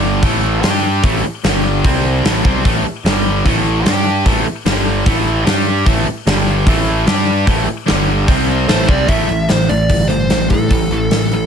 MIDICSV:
0, 0, Header, 1, 7, 480
1, 0, Start_track
1, 0, Key_signature, 0, "minor"
1, 0, Tempo, 403226
1, 1228, Time_signature, 4, 2, 24, 8
1, 13644, End_track
2, 0, Start_track
2, 0, Title_t, "Lead electric guitar"
2, 0, Program_c, 0, 29
2, 10342, Note_on_c, 0, 72, 87
2, 10578, Note_on_c, 0, 74, 70
2, 10588, Note_off_c, 0, 72, 0
2, 10810, Note_off_c, 0, 74, 0
2, 10815, Note_on_c, 0, 76, 85
2, 11300, Note_on_c, 0, 72, 75
2, 11313, Note_off_c, 0, 76, 0
2, 11524, Note_off_c, 0, 72, 0
2, 11539, Note_on_c, 0, 74, 79
2, 11999, Note_on_c, 0, 72, 90
2, 12037, Note_off_c, 0, 74, 0
2, 12459, Note_off_c, 0, 72, 0
2, 12506, Note_on_c, 0, 69, 75
2, 13644, Note_off_c, 0, 69, 0
2, 13644, End_track
3, 0, Start_track
3, 0, Title_t, "Distorted electric guitar"
3, 0, Program_c, 1, 30
3, 0, Note_on_c, 1, 43, 93
3, 0, Note_on_c, 1, 50, 86
3, 0, Note_on_c, 1, 55, 93
3, 263, Note_off_c, 1, 43, 0
3, 270, Note_off_c, 1, 50, 0
3, 273, Note_off_c, 1, 55, 0
3, 281, Note_on_c, 1, 45, 88
3, 288, Note_on_c, 1, 52, 89
3, 291, Note_on_c, 1, 57, 102
3, 747, Note_off_c, 1, 45, 0
3, 755, Note_off_c, 1, 52, 0
3, 755, Note_on_c, 1, 55, 89
3, 764, Note_off_c, 1, 57, 0
3, 764, Note_on_c, 1, 62, 94
3, 764, Note_on_c, 1, 67, 110
3, 1224, Note_off_c, 1, 55, 0
3, 1228, Note_off_c, 1, 67, 0
3, 1229, Note_off_c, 1, 62, 0
3, 1229, Note_on_c, 1, 45, 88
3, 1242, Note_on_c, 1, 52, 109
3, 1242, Note_on_c, 1, 57, 106
3, 1461, Note_off_c, 1, 45, 0
3, 1468, Note_off_c, 1, 52, 0
3, 1468, Note_off_c, 1, 57, 0
3, 1714, Note_on_c, 1, 43, 87
3, 1725, Note_on_c, 1, 50, 92
3, 1725, Note_on_c, 1, 55, 101
3, 2182, Note_off_c, 1, 43, 0
3, 2188, Note_off_c, 1, 50, 0
3, 2188, Note_off_c, 1, 55, 0
3, 2203, Note_on_c, 1, 48, 85
3, 2209, Note_on_c, 1, 55, 90
3, 2213, Note_on_c, 1, 60, 97
3, 2666, Note_off_c, 1, 48, 0
3, 2669, Note_off_c, 1, 55, 0
3, 2671, Note_off_c, 1, 60, 0
3, 2682, Note_on_c, 1, 45, 91
3, 2689, Note_on_c, 1, 52, 89
3, 2690, Note_on_c, 1, 57, 104
3, 2906, Note_off_c, 1, 45, 0
3, 2909, Note_off_c, 1, 52, 0
3, 2910, Note_off_c, 1, 57, 0
3, 2914, Note_on_c, 1, 48, 90
3, 2924, Note_on_c, 1, 55, 98
3, 2925, Note_on_c, 1, 60, 92
3, 3141, Note_off_c, 1, 48, 0
3, 3146, Note_off_c, 1, 55, 0
3, 3147, Note_off_c, 1, 60, 0
3, 3151, Note_on_c, 1, 45, 91
3, 3157, Note_on_c, 1, 52, 92
3, 3161, Note_on_c, 1, 57, 102
3, 3380, Note_off_c, 1, 45, 0
3, 3383, Note_off_c, 1, 52, 0
3, 3385, Note_off_c, 1, 57, 0
3, 3634, Note_on_c, 1, 43, 85
3, 3643, Note_on_c, 1, 50, 99
3, 3647, Note_on_c, 1, 55, 101
3, 4100, Note_off_c, 1, 43, 0
3, 4105, Note_off_c, 1, 50, 0
3, 4106, Note_off_c, 1, 55, 0
3, 4112, Note_on_c, 1, 45, 86
3, 4117, Note_on_c, 1, 57, 85
3, 4119, Note_on_c, 1, 52, 88
3, 4579, Note_off_c, 1, 45, 0
3, 4586, Note_off_c, 1, 52, 0
3, 4586, Note_on_c, 1, 55, 86
3, 4588, Note_off_c, 1, 57, 0
3, 4588, Note_on_c, 1, 62, 88
3, 4600, Note_on_c, 1, 67, 100
3, 5055, Note_off_c, 1, 55, 0
3, 5056, Note_off_c, 1, 62, 0
3, 5062, Note_off_c, 1, 67, 0
3, 5063, Note_on_c, 1, 45, 93
3, 5076, Note_on_c, 1, 52, 102
3, 5078, Note_on_c, 1, 57, 99
3, 5288, Note_off_c, 1, 45, 0
3, 5300, Note_off_c, 1, 52, 0
3, 5301, Note_off_c, 1, 57, 0
3, 5541, Note_on_c, 1, 43, 82
3, 5546, Note_on_c, 1, 50, 99
3, 5548, Note_on_c, 1, 55, 94
3, 6012, Note_off_c, 1, 43, 0
3, 6014, Note_off_c, 1, 50, 0
3, 6015, Note_off_c, 1, 55, 0
3, 6019, Note_on_c, 1, 45, 84
3, 6028, Note_on_c, 1, 57, 95
3, 6029, Note_on_c, 1, 52, 87
3, 6485, Note_off_c, 1, 52, 0
3, 6489, Note_on_c, 1, 55, 94
3, 6490, Note_off_c, 1, 45, 0
3, 6492, Note_off_c, 1, 57, 0
3, 6497, Note_on_c, 1, 62, 105
3, 6505, Note_on_c, 1, 67, 110
3, 6965, Note_off_c, 1, 55, 0
3, 6969, Note_off_c, 1, 62, 0
3, 6973, Note_off_c, 1, 67, 0
3, 6975, Note_on_c, 1, 45, 92
3, 6982, Note_on_c, 1, 52, 98
3, 6985, Note_on_c, 1, 57, 102
3, 7208, Note_off_c, 1, 45, 0
3, 7212, Note_off_c, 1, 52, 0
3, 7213, Note_off_c, 1, 57, 0
3, 7462, Note_on_c, 1, 43, 94
3, 7467, Note_on_c, 1, 50, 90
3, 7471, Note_on_c, 1, 55, 97
3, 7931, Note_off_c, 1, 43, 0
3, 7934, Note_off_c, 1, 50, 0
3, 7936, Note_off_c, 1, 55, 0
3, 7941, Note_on_c, 1, 45, 87
3, 7944, Note_on_c, 1, 52, 90
3, 7953, Note_on_c, 1, 57, 88
3, 8407, Note_off_c, 1, 52, 0
3, 8411, Note_off_c, 1, 45, 0
3, 8412, Note_on_c, 1, 55, 105
3, 8416, Note_off_c, 1, 57, 0
3, 8421, Note_on_c, 1, 62, 101
3, 8423, Note_on_c, 1, 67, 109
3, 8885, Note_on_c, 1, 45, 104
3, 8887, Note_off_c, 1, 55, 0
3, 8891, Note_off_c, 1, 62, 0
3, 8892, Note_off_c, 1, 67, 0
3, 8895, Note_on_c, 1, 52, 94
3, 8898, Note_on_c, 1, 57, 100
3, 9113, Note_off_c, 1, 45, 0
3, 9128, Note_off_c, 1, 52, 0
3, 9130, Note_off_c, 1, 57, 0
3, 9357, Note_on_c, 1, 43, 87
3, 9364, Note_on_c, 1, 50, 104
3, 9371, Note_on_c, 1, 55, 99
3, 9840, Note_off_c, 1, 43, 0
3, 9844, Note_off_c, 1, 50, 0
3, 9844, Note_off_c, 1, 55, 0
3, 9854, Note_on_c, 1, 48, 80
3, 9858, Note_on_c, 1, 55, 90
3, 9863, Note_on_c, 1, 60, 93
3, 10318, Note_off_c, 1, 48, 0
3, 10323, Note_on_c, 1, 45, 90
3, 10331, Note_off_c, 1, 55, 0
3, 10332, Note_off_c, 1, 60, 0
3, 10336, Note_on_c, 1, 52, 106
3, 10337, Note_on_c, 1, 57, 106
3, 10564, Note_off_c, 1, 45, 0
3, 10570, Note_on_c, 1, 48, 88
3, 10571, Note_off_c, 1, 52, 0
3, 10571, Note_off_c, 1, 57, 0
3, 10575, Note_on_c, 1, 55, 89
3, 10583, Note_on_c, 1, 60, 92
3, 10797, Note_off_c, 1, 48, 0
3, 10797, Note_off_c, 1, 55, 0
3, 10802, Note_on_c, 1, 45, 88
3, 10802, Note_on_c, 1, 52, 74
3, 10811, Note_off_c, 1, 60, 0
3, 10815, Note_on_c, 1, 57, 87
3, 11029, Note_off_c, 1, 45, 0
3, 11037, Note_off_c, 1, 52, 0
3, 11043, Note_on_c, 1, 45, 68
3, 11044, Note_off_c, 1, 57, 0
3, 11050, Note_on_c, 1, 52, 78
3, 11268, Note_off_c, 1, 45, 0
3, 11272, Note_off_c, 1, 52, 0
3, 11293, Note_on_c, 1, 45, 62
3, 11296, Note_on_c, 1, 52, 72
3, 11514, Note_off_c, 1, 45, 0
3, 11515, Note_off_c, 1, 52, 0
3, 11540, Note_on_c, 1, 45, 74
3, 11542, Note_on_c, 1, 52, 70
3, 11758, Note_off_c, 1, 45, 0
3, 11758, Note_off_c, 1, 52, 0
3, 11779, Note_on_c, 1, 45, 66
3, 11788, Note_on_c, 1, 52, 73
3, 11998, Note_off_c, 1, 45, 0
3, 12002, Note_off_c, 1, 52, 0
3, 12021, Note_on_c, 1, 45, 59
3, 12022, Note_on_c, 1, 52, 69
3, 12239, Note_off_c, 1, 45, 0
3, 12240, Note_off_c, 1, 52, 0
3, 12270, Note_on_c, 1, 45, 77
3, 12274, Note_on_c, 1, 52, 86
3, 12484, Note_off_c, 1, 45, 0
3, 12486, Note_off_c, 1, 52, 0
3, 12519, Note_on_c, 1, 45, 63
3, 12524, Note_on_c, 1, 52, 66
3, 12729, Note_off_c, 1, 45, 0
3, 12732, Note_off_c, 1, 52, 0
3, 12760, Note_on_c, 1, 45, 75
3, 12763, Note_on_c, 1, 52, 78
3, 12970, Note_off_c, 1, 45, 0
3, 12972, Note_off_c, 1, 52, 0
3, 13002, Note_on_c, 1, 45, 70
3, 13003, Note_on_c, 1, 52, 71
3, 13212, Note_off_c, 1, 45, 0
3, 13212, Note_off_c, 1, 52, 0
3, 13232, Note_on_c, 1, 45, 64
3, 13235, Note_on_c, 1, 52, 69
3, 13448, Note_off_c, 1, 45, 0
3, 13449, Note_off_c, 1, 52, 0
3, 13486, Note_on_c, 1, 45, 65
3, 13491, Note_on_c, 1, 52, 76
3, 13644, Note_off_c, 1, 45, 0
3, 13644, Note_off_c, 1, 52, 0
3, 13644, End_track
4, 0, Start_track
4, 0, Title_t, "Picked electric bass"
4, 0, Program_c, 2, 34
4, 0, Note_on_c, 2, 31, 97
4, 233, Note_off_c, 2, 31, 0
4, 273, Note_on_c, 2, 33, 95
4, 717, Note_off_c, 2, 33, 0
4, 754, Note_on_c, 2, 43, 93
4, 1198, Note_off_c, 2, 43, 0
4, 1234, Note_on_c, 2, 33, 85
4, 1454, Note_off_c, 2, 33, 0
4, 1716, Note_on_c, 2, 31, 98
4, 2157, Note_off_c, 2, 31, 0
4, 2202, Note_on_c, 2, 36, 92
4, 2640, Note_off_c, 2, 36, 0
4, 2668, Note_on_c, 2, 33, 83
4, 2889, Note_off_c, 2, 33, 0
4, 2913, Note_on_c, 2, 36, 95
4, 3132, Note_off_c, 2, 36, 0
4, 3156, Note_on_c, 2, 33, 84
4, 3373, Note_off_c, 2, 33, 0
4, 3621, Note_on_c, 2, 31, 91
4, 4067, Note_off_c, 2, 31, 0
4, 4119, Note_on_c, 2, 33, 95
4, 4556, Note_off_c, 2, 33, 0
4, 4581, Note_on_c, 2, 43, 91
4, 5026, Note_off_c, 2, 43, 0
4, 5063, Note_on_c, 2, 33, 88
4, 5284, Note_off_c, 2, 33, 0
4, 5541, Note_on_c, 2, 31, 81
4, 5985, Note_off_c, 2, 31, 0
4, 6026, Note_on_c, 2, 33, 100
4, 6468, Note_off_c, 2, 33, 0
4, 6497, Note_on_c, 2, 43, 98
4, 6943, Note_off_c, 2, 43, 0
4, 6977, Note_on_c, 2, 33, 90
4, 7200, Note_off_c, 2, 33, 0
4, 7457, Note_on_c, 2, 31, 93
4, 7903, Note_off_c, 2, 31, 0
4, 7933, Note_on_c, 2, 33, 96
4, 8381, Note_off_c, 2, 33, 0
4, 8416, Note_on_c, 2, 43, 96
4, 8862, Note_off_c, 2, 43, 0
4, 8894, Note_on_c, 2, 33, 86
4, 9118, Note_off_c, 2, 33, 0
4, 9402, Note_on_c, 2, 31, 90
4, 9837, Note_off_c, 2, 31, 0
4, 9859, Note_on_c, 2, 36, 99
4, 10305, Note_off_c, 2, 36, 0
4, 10337, Note_on_c, 2, 33, 85
4, 10561, Note_off_c, 2, 33, 0
4, 10576, Note_on_c, 2, 36, 99
4, 10801, Note_off_c, 2, 36, 0
4, 10810, Note_on_c, 2, 33, 76
4, 11039, Note_off_c, 2, 33, 0
4, 11063, Note_on_c, 2, 33, 84
4, 11287, Note_off_c, 2, 33, 0
4, 11306, Note_on_c, 2, 33, 80
4, 11529, Note_off_c, 2, 33, 0
4, 11542, Note_on_c, 2, 33, 84
4, 11767, Note_off_c, 2, 33, 0
4, 11781, Note_on_c, 2, 31, 92
4, 12233, Note_off_c, 2, 31, 0
4, 12250, Note_on_c, 2, 33, 87
4, 12482, Note_off_c, 2, 33, 0
4, 12501, Note_on_c, 2, 45, 85
4, 12728, Note_off_c, 2, 45, 0
4, 12739, Note_on_c, 2, 33, 77
4, 12968, Note_off_c, 2, 33, 0
4, 12977, Note_on_c, 2, 33, 76
4, 13207, Note_off_c, 2, 33, 0
4, 13225, Note_on_c, 2, 33, 78
4, 13644, Note_off_c, 2, 33, 0
4, 13644, End_track
5, 0, Start_track
5, 0, Title_t, "Muted distorted electric guitar strokes"
5, 1483, Note_on_c, 9, 29, 61
5, 1603, Note_off_c, 9, 29, 0
5, 3397, Note_on_c, 9, 29, 61
5, 3516, Note_off_c, 9, 29, 0
5, 5303, Note_on_c, 9, 29, 63
5, 5422, Note_off_c, 9, 29, 0
5, 7226, Note_on_c, 9, 29, 62
5, 7345, Note_off_c, 9, 29, 0
5, 9128, Note_on_c, 9, 29, 65
5, 9247, Note_off_c, 9, 29, 0
5, 13644, End_track
6, 0, Start_track
6, 0, Title_t, "Muted picked electric bass strokes"
6, 1478, Note_on_c, 9, 29, 38
6, 1597, Note_off_c, 9, 29, 0
6, 3393, Note_on_c, 9, 29, 37
6, 3512, Note_off_c, 9, 29, 0
6, 5301, Note_on_c, 9, 29, 39
6, 5420, Note_off_c, 9, 29, 0
6, 7219, Note_on_c, 9, 29, 42
6, 7338, Note_off_c, 9, 29, 0
6, 9159, Note_on_c, 9, 29, 39
6, 9278, Note_off_c, 9, 29, 0
6, 13644, End_track
7, 0, Start_track
7, 0, Title_t, "Drums"
7, 269, Note_on_c, 9, 46, 54
7, 270, Note_on_c, 9, 36, 104
7, 388, Note_off_c, 9, 46, 0
7, 389, Note_off_c, 9, 36, 0
7, 753, Note_on_c, 9, 46, 64
7, 760, Note_on_c, 9, 38, 117
7, 872, Note_off_c, 9, 46, 0
7, 879, Note_off_c, 9, 38, 0
7, 1233, Note_on_c, 9, 36, 113
7, 1233, Note_on_c, 9, 46, 57
7, 1352, Note_off_c, 9, 36, 0
7, 1352, Note_off_c, 9, 46, 0
7, 1714, Note_on_c, 9, 46, 59
7, 1721, Note_on_c, 9, 38, 102
7, 1833, Note_off_c, 9, 46, 0
7, 1840, Note_off_c, 9, 38, 0
7, 2197, Note_on_c, 9, 36, 110
7, 2199, Note_on_c, 9, 46, 54
7, 2316, Note_off_c, 9, 36, 0
7, 2318, Note_off_c, 9, 46, 0
7, 2680, Note_on_c, 9, 46, 57
7, 2687, Note_on_c, 9, 38, 119
7, 2799, Note_off_c, 9, 46, 0
7, 2806, Note_off_c, 9, 38, 0
7, 2915, Note_on_c, 9, 36, 106
7, 3034, Note_off_c, 9, 36, 0
7, 3157, Note_on_c, 9, 36, 109
7, 3164, Note_on_c, 9, 46, 52
7, 3276, Note_off_c, 9, 36, 0
7, 3283, Note_off_c, 9, 46, 0
7, 3639, Note_on_c, 9, 46, 52
7, 3646, Note_on_c, 9, 38, 113
7, 3758, Note_off_c, 9, 46, 0
7, 3765, Note_off_c, 9, 38, 0
7, 4114, Note_on_c, 9, 36, 96
7, 4119, Note_on_c, 9, 46, 57
7, 4233, Note_off_c, 9, 36, 0
7, 4238, Note_off_c, 9, 46, 0
7, 4593, Note_on_c, 9, 46, 64
7, 4600, Note_on_c, 9, 38, 121
7, 4712, Note_off_c, 9, 46, 0
7, 4719, Note_off_c, 9, 38, 0
7, 5070, Note_on_c, 9, 36, 100
7, 5073, Note_on_c, 9, 46, 57
7, 5189, Note_off_c, 9, 36, 0
7, 5192, Note_off_c, 9, 46, 0
7, 5546, Note_on_c, 9, 46, 57
7, 5553, Note_on_c, 9, 38, 114
7, 5665, Note_off_c, 9, 46, 0
7, 5672, Note_off_c, 9, 38, 0
7, 6026, Note_on_c, 9, 36, 104
7, 6028, Note_on_c, 9, 46, 56
7, 6145, Note_off_c, 9, 36, 0
7, 6147, Note_off_c, 9, 46, 0
7, 6508, Note_on_c, 9, 46, 63
7, 6515, Note_on_c, 9, 38, 116
7, 6627, Note_off_c, 9, 46, 0
7, 6634, Note_off_c, 9, 38, 0
7, 6981, Note_on_c, 9, 36, 108
7, 6981, Note_on_c, 9, 46, 55
7, 7100, Note_off_c, 9, 36, 0
7, 7100, Note_off_c, 9, 46, 0
7, 7462, Note_on_c, 9, 46, 60
7, 7469, Note_on_c, 9, 38, 108
7, 7581, Note_off_c, 9, 46, 0
7, 7588, Note_off_c, 9, 38, 0
7, 7937, Note_on_c, 9, 36, 102
7, 7938, Note_on_c, 9, 46, 59
7, 8056, Note_off_c, 9, 36, 0
7, 8057, Note_off_c, 9, 46, 0
7, 8417, Note_on_c, 9, 46, 64
7, 8424, Note_on_c, 9, 38, 116
7, 8536, Note_off_c, 9, 46, 0
7, 8543, Note_off_c, 9, 38, 0
7, 8894, Note_on_c, 9, 46, 58
7, 8896, Note_on_c, 9, 36, 98
7, 9013, Note_off_c, 9, 46, 0
7, 9015, Note_off_c, 9, 36, 0
7, 9378, Note_on_c, 9, 46, 60
7, 9385, Note_on_c, 9, 38, 117
7, 9497, Note_off_c, 9, 46, 0
7, 9504, Note_off_c, 9, 38, 0
7, 9859, Note_on_c, 9, 36, 109
7, 9861, Note_on_c, 9, 46, 63
7, 9978, Note_off_c, 9, 36, 0
7, 9980, Note_off_c, 9, 46, 0
7, 10342, Note_on_c, 9, 46, 60
7, 10349, Note_on_c, 9, 38, 107
7, 10461, Note_off_c, 9, 46, 0
7, 10468, Note_off_c, 9, 38, 0
7, 10578, Note_on_c, 9, 36, 108
7, 10697, Note_off_c, 9, 36, 0
7, 10813, Note_on_c, 9, 46, 63
7, 10817, Note_on_c, 9, 36, 105
7, 10932, Note_off_c, 9, 46, 0
7, 10936, Note_off_c, 9, 36, 0
7, 11055, Note_on_c, 9, 46, 36
7, 11175, Note_off_c, 9, 46, 0
7, 11297, Note_on_c, 9, 46, 60
7, 11304, Note_on_c, 9, 38, 96
7, 11416, Note_off_c, 9, 46, 0
7, 11423, Note_off_c, 9, 38, 0
7, 11538, Note_on_c, 9, 46, 48
7, 11657, Note_off_c, 9, 46, 0
7, 11779, Note_on_c, 9, 46, 61
7, 11780, Note_on_c, 9, 36, 79
7, 11899, Note_off_c, 9, 36, 0
7, 11899, Note_off_c, 9, 46, 0
7, 12016, Note_on_c, 9, 46, 44
7, 12135, Note_off_c, 9, 46, 0
7, 12260, Note_on_c, 9, 46, 63
7, 12267, Note_on_c, 9, 38, 103
7, 12379, Note_off_c, 9, 46, 0
7, 12386, Note_off_c, 9, 38, 0
7, 12497, Note_on_c, 9, 46, 52
7, 12503, Note_on_c, 9, 36, 81
7, 12616, Note_off_c, 9, 46, 0
7, 12622, Note_off_c, 9, 36, 0
7, 12743, Note_on_c, 9, 46, 64
7, 12745, Note_on_c, 9, 36, 101
7, 12863, Note_off_c, 9, 46, 0
7, 12864, Note_off_c, 9, 36, 0
7, 12985, Note_on_c, 9, 46, 43
7, 13104, Note_off_c, 9, 46, 0
7, 13225, Note_on_c, 9, 46, 72
7, 13232, Note_on_c, 9, 38, 102
7, 13344, Note_off_c, 9, 46, 0
7, 13352, Note_off_c, 9, 38, 0
7, 13471, Note_on_c, 9, 46, 45
7, 13590, Note_off_c, 9, 46, 0
7, 13644, End_track
0, 0, End_of_file